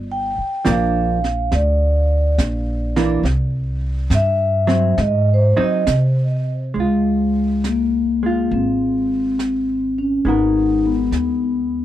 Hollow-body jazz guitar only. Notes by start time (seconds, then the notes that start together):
0.65 F3 A#3 D4
2.96 E3 A#3 D4
4.67 F#3 C4
5.57 F#3 C4 D#4
6.74 G#3
6.80 F4
8.23 G#3 F4
10.25 G#3 B3 F#4
10.29 A#4